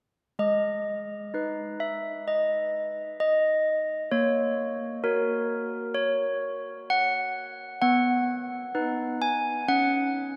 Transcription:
0.39 1.30 G#3 soft
0.39 1.76 D#5 medium
1.34 4.07 D#4 soft
1.34 4.07 B4 soft
1.80 2.25 E5 medium
2.28 3.16 D#5 medium
3.20 4.08 D#5 medium
4.12 5.00 A#3 soft
4.12 4.99 C#5 medium
5.04 7.77 F#4 soft
5.04 5.91 A#4 medium
5.04 5.93 C#5 soft
5.95 6.85 C#5 medium
6.90 7.78 F#5 medium
7.82 8.71 B3 medium
7.82 9.16 F#5 medium
8.75 9.63 D#4 soft
8.75 9.63 B4 soft
9.22 9.65 G#5 medium
9.68 10.36 C#4 medium
9.68 10.36 F#5 medium

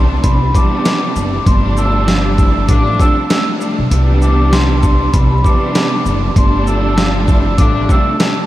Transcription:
0.00 0.20 C2 loud
0.00 0.44 C3 loud
0.00 0.44 E3 loud
0.00 0.44 G3 loud
0.00 0.44 B3 loud
0.00 0.44 D4 loud
0.12 0.23 C6 medium
0.23 0.49 C2 medium
0.23 0.39 B5 medium
0.23 kick medium
0.23 closed hi-hat medium
0.45 0.55 B5 medium
0.53 1.40 C3 loud
0.53 1.40 E3 medium
0.53 1.40 G3 medium
0.53 1.40 B3 loud
0.53 1.40 D4 loud
0.53 1.43 D6 medium
0.53 kick medium
0.53 closed hi-hat medium
0.53 shaker medium
0.85 snare loud
0.85 closed hi-hat medium
1.16 1.41 F#1 medium
1.16 shaker soft
1.44 2.65 G1 loud
1.44 2.88 C3 loud
1.44 2.88 F3 loud
1.44 2.89 G3 loud
1.44 2.89 A3 loud
1.44 2.89 D4 loud
1.44 1.74 C6 medium
1.44 kick loud
1.44 closed hi-hat medium
1.77 2.02 A3 medium
1.77 2.02 D4 medium
1.77 2.02 F4 medium
1.77 2.02 A4 medium
1.77 2.65 E6 medium
1.77 shaker soft
2.08 2.32 F3 medium
2.08 2.32 C4 medium
2.08 2.32 D4 medium
2.08 2.32 F4 medium
2.08 snare loud
2.08 closed hi-hat medium
2.38 2.63 E3 medium
2.38 2.63 A3 medium
2.38 2.63 C4 medium
2.38 2.63 E4 medium
2.38 kick medium
2.38 shaker medium
2.68 2.94 A1 loud
2.68 3.27 D3 loud
2.68 3.27 F3 loud
2.68 3.27 A3 loud
2.68 3.27 D4 loud
2.68 2.96 D6 medium
2.68 kick medium
2.68 closed hi-hat medium
2.99 3.28 C3 loud
2.99 3.28 F3 medium
2.99 3.28 G3 medium
2.99 3.28 A3 medium
2.99 3.28 D4 loud
2.99 3.46 E6 medium
2.99 kick medium
2.99 shaker medium
3.30 3.58 C3 medium
3.30 3.58 F3 medium
3.30 3.58 G3 medium
3.30 3.58 A3 medium
3.30 3.59 D4 medium
3.30 snare loud
3.30 closed hi-hat medium
3.59 3.88 C3 medium
3.59 3.88 F3 medium
3.59 3.89 G3 medium
3.59 3.89 A3 medium
3.59 3.89 D4 medium
3.59 shaker medium
3.79 3.89 B1 medium
3.90 5.10 C2 loud
3.90 5.33 C3 loud
3.90 5.33 E3 loud
3.90 5.34 G3 loud
3.90 5.34 B3 loud
3.90 5.34 D4 loud
3.90 closed hi-hat medium
4.22 4.49 D6 medium
4.22 shaker soft
4.53 4.98 C6 medium
4.53 snare loud
4.53 closed hi-hat medium
4.83 kick loud
4.83 shaker medium
5.01 5.13 C6 medium
5.12 5.39 C2 loud
5.12 5.28 B5 medium
5.12 kick medium
5.12 closed hi-hat medium
5.29 5.42 B5 medium
5.43 6.29 C3 loud
5.43 6.29 E3 medium
5.43 6.30 G3 loud
5.43 6.30 B3 loud
5.43 6.30 D4 loud
5.43 6.32 D6 medium
5.43 kick medium
5.43 shaker medium
5.75 snare loud
5.75 closed hi-hat medium
6.05 6.31 F#1 medium
6.05 shaker medium
6.34 7.55 G1 loud
6.34 7.78 C3 loud
6.34 7.78 F3 loud
6.34 7.78 G3 loud
6.34 7.78 A3 loud
6.34 7.79 D4 loud
6.34 6.65 C6 loud
6.34 kick loud
6.34 closed hi-hat medium
6.67 6.92 A3 medium
6.67 6.92 D4 medium
6.67 6.92 F4 medium
6.67 6.92 A4 medium
6.67 7.55 E6 medium
6.67 shaker medium
6.98 7.22 F3 medium
6.98 7.22 C4 medium
6.98 7.22 D4 loud
6.98 7.22 F4 loud
6.98 snare loud
6.98 closed hi-hat medium
7.28 7.53 E3 medium
7.28 7.53 A3 medium
7.28 7.53 C4 medium
7.28 7.53 E4 medium
7.28 kick loud
7.28 shaker medium
7.57 7.84 A1 loud
7.57 8.17 D3 loud
7.57 8.17 F3 loud
7.57 8.17 A3 loud
7.57 8.17 D4 loud
7.57 7.86 D6 medium
7.57 kick medium
7.57 closed hi-hat medium
7.88 8.17 C3 loud
7.88 8.17 F3 medium
7.88 8.18 G3 medium
7.88 8.18 A3 medium
7.88 8.18 D4 loud
7.88 8.36 E6 medium
7.88 kick medium
7.88 shaker medium
8.19 8.46 C3 medium
8.19 8.46 F3 medium
8.19 8.46 G3 medium
8.19 8.46 A3 medium
8.19 8.46 D4 medium
8.19 snare loud
8.19 closed hi-hat medium

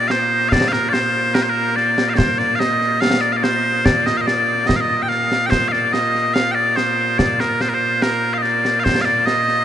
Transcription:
0.00 9.65 A#2 medium
0.00 9.65 A#3 medium
0.08 0.49 C5 medium
0.08 0.11 F5 medium
0.08 snare medium
0.49 0.68 D5 loud
0.49 0.53 F5 loud
0.49 concert bass drum medium
0.49 snare loud
0.68 0.72 F5 medium
0.72 0.89 A#4 medium
0.72 snare medium
0.89 0.93 D5 loud
0.93 1.34 C5 loud
0.93 snare medium
1.34 1.43 A#4 medium
1.34 snare loud
1.43 1.49 C5 medium
1.49 1.76 A#4 medium
1.76 2.09 D5 medium
1.76 snare soft
1.98 snare medium
2.09 2.14 F5 medium
2.14 2.38 C5 loud
2.14 2.18 D5 medium
2.18 concert bass drum medium
2.18 snare loud
2.38 2.56 D5 medium
2.38 snare soft
2.56 3.01 D#5 medium
2.56 2.59 F5 medium
2.60 snare medium
2.81 snare soft
3.01 3.21 F5 loud
3.01 snare loud
3.21 3.33 D5 medium
3.33 3.37 F5 medium
3.37 3.43 D5 medium
3.43 3.85 C5 medium
3.43 snare medium
3.85 4.06 D5 loud
3.85 concert bass drum medium
3.85 snare loud
4.06 4.17 D#5 medium
4.06 snare medium
4.17 4.27 D#5 medium
4.17 4.21 F5 medium
4.27 4.67 D5 medium
4.27 snare medium
4.67 4.76 D#5 medium
4.67 concert bass drum medium
4.67 snare loud
4.76 4.81 F5 medium
4.81 5.02 D#5 medium
5.02 5.08 G5 medium
5.08 5.46 F5 loud
5.08 snare soft
5.32 snare medium
5.46 5.50 G5 loud
5.50 5.68 C5 loud
5.50 concert bass drum medium
5.50 snare medium
5.68 5.93 D5 medium
5.68 5.72 F5 medium
5.73 snare soft
5.93 6.34 D#5 loud
5.93 snare medium
6.15 snare soft
6.34 6.51 F5 loud
6.34 snare loud
6.51 6.76 D5 medium
6.51 6.55 G5 medium
6.76 7.18 C5 medium
6.76 snare medium
7.18 7.40 D5 medium
7.18 concert bass drum medium
7.18 snare medium
7.40 7.61 A#4 medium
7.40 snare medium
7.61 7.69 C5 medium
7.61 snare medium
7.69 7.74 A#4 medium
7.74 8.02 C5 medium
8.02 8.34 A#4 medium
8.02 snare medium
8.34 8.38 F5 medium
8.38 8.42 D#5 medium
8.42 8.80 D5 medium
8.42 snare soft
8.65 snare medium
8.80 8.84 F5 loud
8.84 9.01 C5 loud
8.84 concert bass drum medium
8.84 snare medium
9.01 9.26 D5 medium
9.01 9.05 F5 medium
9.07 snare soft
9.26 9.65 D#5 loud
9.26 snare medium
9.48 snare soft

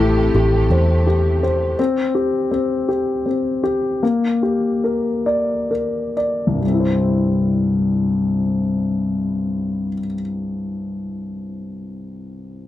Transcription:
0.00 0.30 A1 medium
0.00 1.75 C3 medium
0.00 1.75 A3 medium
0.00 1.39 E4 soft
0.00 0.35 G4 soft
0.00 1.75 G4 medium
0.00 0.72 C5 soft
0.34 0.68 A1 medium
0.34 1.06 G4 soft
0.70 1.74 E2 medium
0.70 1.42 C5 soft
1.07 1.77 G4 soft
1.43 1.78 C5 soft
1.79 2.50 C4 medium
2.15 2.87 G4 soft
2.51 3.24 C4 soft
2.89 3.62 G4 soft
3.26 4.00 C4 soft
3.64 4.01 G4 soft
4.03 6.59 A#3 soft
4.43 6.12 G4 soft
4.84 5.69 A#4 soft
5.26 6.15 D5 soft
5.71 6.61 A#4 soft
6.17 6.62 D5 soft
6.47 9.86 C2 soft
6.54 9.93 G2 soft
6.61 10.00 G3 soft
6.67 10.06 C4 soft
6.74 10.13 E4 soft
6.80 10.20 C5 soft

